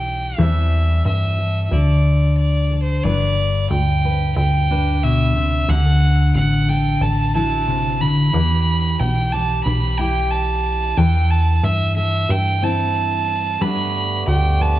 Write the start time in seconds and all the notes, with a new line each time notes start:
Already playing: B1 E3 G3 E4 G4 G5
0.38 E2 E3 G3 C4 E4 A4 E5
1.05 G2 E5
1.38 A4
1.65 E5
1.71 D2 D3 A4 D5
2.38 D5
2.72 A4
2.83 C5
3.03 G1 G2 B4 D5
3.70 D2 G5
4.05 B4
4.36 D2 G5
4.70 D4 B4
5.03 B2 E5
5.36 C3
5.69 D2 D3 G4 F#5
5.85 A4
6.35 A1 F#5
6.69 A4 G5
7.01 A1 A5
7.34 E4 F#4 A4 A5
7.67 C3
8.00 D3 B5
8.33 E2 E3 G4
9.00 B1 G5
9.32 G4 A5
9.64 B1 B5
9.98 E4 G4 G5
10.31 A5
10.97 E2 E3 A4 G5
11.31 A5
11.63 G2 E5
11.96 A4 E5
12.29 G2 G5
12.62 C4 E4 A4 A5
13.60 G2 D3 A3 B3 G4 B4 B5
14.27 D2 G5
14.60 B4 A5